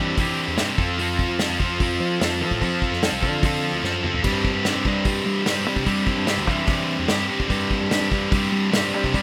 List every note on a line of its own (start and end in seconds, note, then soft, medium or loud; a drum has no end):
0.00 0.46 E3 medium
0.00 0.16 G3 medium
0.00 0.18 C4 medium
0.00 0.18 D4 medium
0.00 0.20 G4 medium
0.17 0.57 G3 medium
0.17 0.59 C4 medium
0.17 0.59 D4 medium
0.17 0.60 G4 medium
0.17 kick loud
0.17 open hi-hat medium
0.48 0.58 E2 medium
0.57 0.68 G2 medium
0.57 0.77 G3 medium
0.57 0.80 C4 medium
0.57 0.79 D4 medium
0.57 0.78 G4 medium
0.57 snare loud
0.57 open hi-hat medium
0.78 1.27 F2 medium
0.78 0.98 F3 medium
0.78 1.00 C4 medium
0.78 1.01 F4 medium
0.78 1.02 A4 medium
0.78 kick medium
0.99 1.39 F3 medium
0.99 1.41 C4 medium
0.99 1.41 F4 medium
0.99 1.42 A4 medium
0.99 open hi-hat medium
1.19 kick medium
1.29 1.49 F2 medium
1.39 1.79 F3 medium
1.39 1.62 C4 medium
1.39 1.61 F4 medium
1.39 1.59 A4 medium
1.39 snare loud
1.39 open hi-hat medium
1.50 1.59 F2 medium
1.59 1.98 F2 medium
1.59 1.80 C4 medium
1.59 1.80 F4 medium
1.59 1.81 A4 medium
1.59 kick medium
1.79 2.19 F3 medium
1.79 2.21 C4 medium
1.79 2.22 F4 medium
1.79 2.23 A4 medium
1.79 kick loud
1.79 open hi-hat medium
2.00 2.20 F3 medium
2.20 2.42 F2 medium
2.20 2.59 F3 medium
2.20 2.43 C4 medium
2.20 2.41 F4 medium
2.20 2.39 A4 loud
2.20 snare loud
2.20 open hi-hat medium
2.40 2.51 F3 medium
2.40 2.62 C4 medium
2.40 2.62 F4 medium
2.40 2.63 A4 medium
2.51 2.61 A2 medium
2.51 kick medium
2.61 3.00 F3 medium
2.61 2.81 F3 medium
2.61 3.03 C4 medium
2.61 3.03 F4 medium
2.61 3.04 A4 medium
2.61 kick medium
2.61 open hi-hat soft
2.82 kick medium
2.91 3.11 F2 medium
2.91 snare soft
3.02 3.41 F3 medium
3.02 3.25 C4 medium
3.02 3.22 F4 medium
3.02 3.20 A4 medium
3.02 snare loud
3.02 open hi-hat medium
3.12 3.24 C2 medium
3.21 3.71 D3 medium
3.21 3.44 F4 medium
3.21 3.45 A4 medium
3.21 kick medium
3.25 3.43 C4 medium
3.43 3.81 F3 medium
3.43 3.84 C4 medium
3.43 3.84 F4 medium
3.43 3.85 A4 medium
3.43 kick loud
3.43 open hi-hat medium
3.72 3.82 D2 medium
3.83 4.03 F#2 medium
3.83 4.23 F3 medium
3.83 4.06 C4 medium
3.83 4.04 F4 medium
3.83 4.02 A4 medium
3.83 snare medium
4.03 4.25 C4 medium
4.03 4.23 F4 medium
4.03 4.23 A4 medium
4.03 mid tom medium
4.14 floor tom medium
4.23 4.53 G2 medium
4.23 4.64 G3 medium
4.23 4.65 C4 medium
4.23 4.66 D4 medium
4.23 4.68 G4 loud
4.23 kick medium
4.23 open hi-hat medium
4.23 crash medium
4.45 kick medium
4.54 4.74 G2 medium
4.65 5.05 G3 medium
4.65 4.88 C4 medium
4.65 4.87 D4 medium
4.65 4.85 G4 medium
4.65 snare loud
4.65 open hi-hat medium
4.75 4.85 G2 medium
4.85 5.24 G2 medium
4.85 5.06 C4 medium
4.85 5.08 D4 medium
4.85 5.08 G4 medium
4.85 kick medium
5.05 5.45 G3 medium
5.05 5.46 C4 medium
5.05 5.48 D4 medium
5.05 5.49 G4 medium
5.05 kick loud
5.05 open hi-hat medium
5.26 5.45 G3 medium
5.46 5.67 G2 medium
5.46 5.85 G3 medium
5.46 5.68 C4 medium
5.46 5.66 D4 loud
5.46 5.65 G4 medium
5.46 snare loud
5.46 open hi-hat medium
5.65 5.75 G3 medium
5.65 5.86 C4 medium
5.65 5.87 D4 medium
5.65 5.89 G4 medium
5.76 5.86 C3 medium
5.76 kick medium
5.86 6.26 G3 medium
5.86 6.06 G3 medium
5.86 6.26 C4 loud
5.86 6.28 D4 medium
5.86 6.29 G4 loud
5.86 kick medium
5.86 open hi-hat soft
6.07 kick medium
6.17 6.37 G2 medium
6.26 6.66 G3 medium
6.26 6.50 C4 medium
6.26 6.48 D4 medium
6.26 6.46 G4 medium
6.26 snare loud
6.26 open hi-hat soft
6.38 6.47 D2 medium
6.46 6.96 E3 medium
6.46 6.67 C4 medium
6.46 6.69 D4 medium
6.46 6.70 G4 medium
6.46 kick medium
6.67 7.08 G3 medium
6.67 7.09 C4 medium
6.67 7.11 D4 medium
6.67 7.11 G4 medium
6.67 kick loud
6.67 open hi-hat medium
6.99 7.08 E2 medium
7.08 7.28 G2 medium
7.08 7.48 G3 medium
7.08 7.31 C4 loud
7.08 7.30 D4 medium
7.08 7.28 G4 medium
7.08 snare loud
7.08 open hi-hat medium
7.28 7.49 C4 medium
7.28 7.50 D4 medium
7.28 7.51 G4 medium
7.40 kick medium
7.48 7.79 G2 loud
7.48 7.89 G3 medium
7.48 7.91 C4 medium
7.48 7.92 D4 medium
7.48 7.93 G4 loud
7.48 kick medium
7.48 open hi-hat medium
7.71 kick medium
7.81 8.00 G2 medium
7.90 8.31 G3 medium
7.90 8.14 C4 medium
7.90 8.12 D4 medium
7.90 8.10 G4 medium
7.90 snare loud
7.90 open hi-hat medium
8.01 8.11 G2 medium
8.11 8.50 G2 medium
8.11 8.33 C4 medium
8.11 8.34 D4 medium
8.11 8.35 G4 medium
8.11 kick medium
8.32 8.72 G3 medium
8.32 8.73 C4 medium
8.32 8.75 D4 medium
8.32 8.76 G4 medium
8.32 kick loud
8.32 open hi-hat medium
8.52 8.72 G3 loud
8.72 8.94 G2 medium
8.72 9.13 G3 medium
8.72 8.97 C4 loud
8.72 8.95 D4 loud
8.72 8.93 G4 loud
8.72 snare loud
8.72 open hi-hat medium
8.94 9.04 G3 medium
8.94 9.14 C4 medium
8.94 9.15 D4 medium
8.94 9.16 G4 medium
9.04 9.14 C3 medium
9.04 kick medium
9.14 9.22 G3 medium
9.14 9.22 G3 loud
9.14 9.22 C4 loud
9.14 9.22 D4 medium
9.14 9.22 G4 medium
9.14 kick medium
9.14 open hi-hat soft